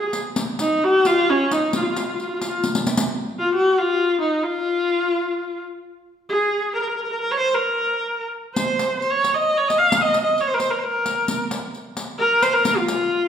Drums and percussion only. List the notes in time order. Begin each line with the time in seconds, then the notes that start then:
0.13 riq
0.36 riq
0.59 riq
1.05 riq
1.51 riq
1.73 riq
1.96 riq
2.20 riq
2.42 riq
2.64 riq
2.75 riq
2.87 riq
2.97 riq
8.56 riq
8.79 riq
9.02 riq
9.24 riq
9.70 riq
9.92 riq
10.14 riq
10.38 riq
10.60 riq
11.06 riq
11.28 riq
11.51 riq
11.74 riq
11.97 riq
12.43 riq
12.65 riq
12.88 riq